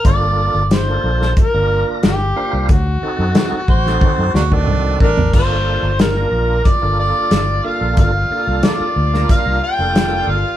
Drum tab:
CC |----------------|----------------|x---------------|----------------|
HH |x---x---x---x---|x---x-----------|----x---x---x---|x---x---x---x---|
SD |----o--o----o---|----o--o--o-----|----o-------o---|----o--o----o---|
T1 |----------------|--------o-------|----------------|----------------|
T2 |----------------|------------o---|----------------|----------------|
FT |----------------|---------------o|----------------|----------------|
BD |o-------o-------|o-----o-o--o--o-|o-------o-------|o-------o-------|